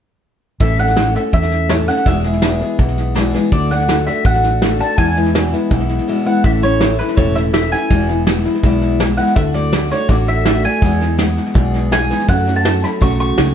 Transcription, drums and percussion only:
0.60 kick, snare
0.79 snare
0.88 snare
0.97 snare, hi-hat pedal
1.15 snare
1.33 kick, snare
1.42 snare
1.51 snare
1.69 snare, hi-hat pedal
1.88 snare
1.97 snare
2.06 kick, snare
2.24 snare
2.33 snare
2.42 snare, hi-hat pedal
2.61 snare
2.79 kick, snare
2.88 snare
2.98 snare
3.16 snare, hi-hat pedal
3.34 snare
3.52 kick, snare
3.71 snare
3.80 snare
3.89 snare, hi-hat pedal
4.07 snare
4.25 kick, snare
4.34 snare
4.43 snare
4.62 snare, hi-hat pedal
4.80 snare
4.98 kick, snare
5.17 snare
5.26 snare
5.35 snare, hi-hat pedal
5.53 snare
5.71 kick, snare
5.80 snare
5.89 snare
5.98 snare
6.44 kick, snare
6.62 snare
6.81 snare, hi-hat pedal
6.99 snare
7.08 snare
7.17 kick, snare
7.36 snare
7.54 snare, hi-hat pedal
7.72 snare
7.90 kick, snare
8.09 snare
8.27 snare, hi-hat pedal
8.45 snare
8.54 snare
8.63 kick, snare
8.82 snare
9.00 snare, hi-hat pedal
9.18 snare
9.27 snare
9.36 kick, snare
9.55 snare
9.73 snare, hi-hat pedal
9.91 snare
10.09 kick, snare
10.27 snare
10.45 snare, hi-hat pedal
10.64 snare
10.82 kick, snare
11.01 snare
11.18 snare, hi-hat pedal
11.37 snare
11.46 snare
11.55 kick, snare
11.74 snare
11.92 snare, hi-hat pedal
12.10 snare
12.20 snare
12.29 kick, snare
12.47 snare
12.65 snare, hi-hat pedal
12.84 snare
13.02 kick, snare
13.20 snare
13.38 snare, hi-hat pedal

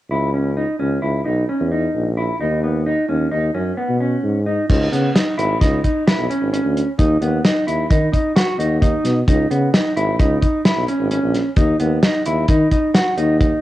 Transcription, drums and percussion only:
4.70 kick, crash
4.93 closed hi-hat
5.15 snare, closed hi-hat
5.39 closed hi-hat
5.61 kick, snare, closed hi-hat
5.84 kick, closed hi-hat
6.08 snare, closed hi-hat
6.31 closed hi-hat
6.54 closed hi-hat
6.77 closed hi-hat
6.99 kick, closed hi-hat
7.22 closed hi-hat
7.45 snare, closed hi-hat
7.68 closed hi-hat
7.91 kick, closed hi-hat
8.14 kick, closed hi-hat
8.36 snare, closed hi-hat
8.60 closed hi-hat
8.82 kick, closed hi-hat
9.05 snare, closed hi-hat
9.28 kick, closed hi-hat
9.51 closed hi-hat
9.74 snare, closed hi-hat
9.97 closed hi-hat
10.20 kick, closed hi-hat
10.43 kick, closed hi-hat
10.65 snare, closed hi-hat
10.88 closed hi-hat
11.11 closed hi-hat
11.35 snare, closed hi-hat
11.56 kick, closed hi-hat
11.80 closed hi-hat
12.03 snare, closed hi-hat
12.26 closed hi-hat
12.48 kick, closed hi-hat
12.72 kick, closed hi-hat
12.95 snare, closed hi-hat
13.18 closed hi-hat
13.41 kick, closed hi-hat

